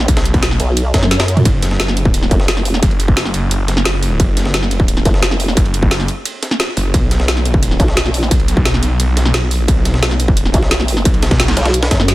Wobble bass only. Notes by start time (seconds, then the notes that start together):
0.60 B1
0.94 F#2
2.31 F#1
5.05 F#1
7.80 B1
10.54 B1
11.57 B1
11.91 F#2